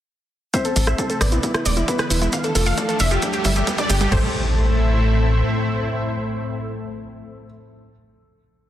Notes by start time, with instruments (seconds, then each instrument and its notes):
0.54 analog synth pad C3 A3, synth pluck A3 E5, grand piano C4 C5, supersaw synth E5, kick, closed hi-hat, riser, maracas
0.65 synth pluck B3 A4, supersaw synth A4, closed hi-hat, maracas
0.76 analog synth bass A1, supersaw synth A4, synth pluck A4, kick, open hi-hat, maracas
0.87 synth pluck E4 E5, supersaw synth E5, cross-stick, maracas
0.98 synth pluck A4, supersaw synth A4, kick, closed hi-hat, maracas
1.10 synth pluck A3 A4, supersaw synth A4, closed hi-hat, maracas
1.21 analog synth bass A1, synth pluck B3 D5, grand piano B3 B4, supersaw synth D5, cross-stick, open hi-hat, maracas
1.32 synth pluck C4 E4, supersaw synth E4, closed hi-hat, maracas
1.43 analog synth pad E3 G#3, synth pluck E4 G#4, supersaw synth E4, kick, closed hi-hat, maracas
1.54 synth pluck E4 B4, supersaw synth E4, cross-stick, closed hi-hat, maracas
1.66 analog synth bass E1, synth pluck G#3 D5, supersaw synth D5, open hi-hat, maracas
1.77 synth pluck B3 E4, supersaw synth E4, closed hi-hat, maracas
1.88 grand piano B3 B4, synth pluck E4, supersaw synth E4, kick, closed hi-hat, maracas
1.98 synth pluck G#4 B4, supersaw synth B4, cross-stick, closed hi-hat, maracas
2.10 analog synth bass E1, synth pluck E4 B4, supersaw synth E4, open hi-hat, maracas
2.22 synth pluck G#3 E4, supersaw synth E4, closed hi-hat, maracas
2.32 analog synth pad F3 A3 D4, synth pluck A3 F5, supersaw synth F5, kick, closed hi-hat, maracas
2.44 synth pluck D4 A4, supersaw synth A4, closed hi-hat, maracas
2.55 analog synth bass F1, grand piano A3 A4, synth pluck F4 A4, supersaw synth A4, open hi-hat, maracas
2.66 synth pluck A4 F5, supersaw synth F5, open hi-hat, maracas
2.77 supersaw synth A4, synth pluck A4 D5, kick, closed hi-hat, maracas
2.89 synth pluck A3 A4, supersaw synth A4, closed hi-hat, maracas
2.99 analog synth bass F1, synth pluck D4 E5, supersaw synth E5, open hi-hat, maracas
3.11 synth pluck F4 G4, supersaw synth G4, closed hi-hat, maracas
3.22 analog synth pad G3 B3, synth pluck D4 G4, supersaw synth G4, kick, closed hi-hat, maracas
3.33 synth pluck G4, supersaw synth G4, closed hi-hat, maracas
3.44 analog synth bass G1, synth pluck G3 E5, supersaw synth E5, kick, open hi-hat, maracas
3.56 synth pluck A3 G4, supersaw synth G4, closed hi-hat, maracas
3.67 synth pluck B3 G4, supersaw synth G4, kick, closed hi-hat, maracas
3.78 synth pluck D4 D5, supersaw synth D5, kick, closed hi-hat, maracas
3.90 analog synth bass G1, synth pluck G4, supersaw synth G4, kick, open hi-hat, maracas
4.01 synth pluck G3 G4, supersaw synth G4, kick, closed hi-hat, maracas
4.12 analog synth bass A1, analog synth pad A2 A3 C4 E4, synth pluck A3 C5, grand piano A4, supersaw synth C5, kick, crash, impact